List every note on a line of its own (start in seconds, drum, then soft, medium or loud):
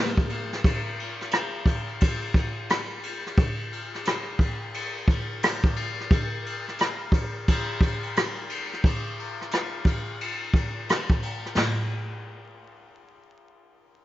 0.17 kick loud
0.29 ride medium
0.53 snare soft
0.53 ride soft
0.64 kick loud
0.64 ride medium
0.99 ride medium
1.20 cross-stick soft
1.20 ride soft
1.31 cross-stick medium
1.31 hi-hat pedal soft
1.31 ride medium
1.66 kick medium
1.66 ride medium
1.87 ride soft
2.00 kick medium
2.00 ride medium
2.34 kick medium
2.34 ride soft
2.69 cross-stick loud
2.69 hi-hat pedal medium
2.69 ride medium
3.03 ride medium
3.26 cross-stick soft
3.26 ride soft
3.37 kick loud
3.37 ride medium
3.72 ride medium
3.94 cross-stick soft
3.94 ride soft
4.05 cross-stick medium
4.05 hi-hat pedal soft
4.05 ride medium
4.39 kick medium
4.39 ride medium
4.61 ride soft
4.74 ride medium
5.08 kick medium
5.08 ride medium
5.43 cross-stick loud
5.43 hi-hat pedal medium
5.43 ride medium
5.64 kick medium
5.76 ride medium
6.00 cross-stick soft
6.11 kick loud
6.11 ride medium
6.46 ride medium
6.67 cross-stick soft
6.67 ride soft
6.78 cross-stick medium
6.78 hi-hat pedal soft
6.78 ride medium
7.12 kick medium
7.12 ride medium
7.48 kick medium
7.48 ride medium
7.81 kick medium
7.81 ride medium
8.03 ride soft
8.16 cross-stick loud
8.16 hi-hat pedal soft
8.16 ride medium
8.49 ride medium
8.73 cross-stick soft
8.73 ride soft
8.84 kick loud
8.84 ride medium
9.19 ride medium
9.41 cross-stick soft
9.51 cross-stick medium
9.51 hi-hat pedal soft
9.51 ride medium
9.85 kick medium
9.85 ride medium
10.08 ride soft
10.21 ride medium
10.54 kick medium
10.54 ride medium
10.89 cross-stick loud
10.89 hi-hat pedal medium
10.89 ride medium
11.10 kick medium
11.22 ride medium
11.46 cross-stick soft
11.46 ride soft
11.57 snare medium
11.57 floor tom medium
11.57 crash medium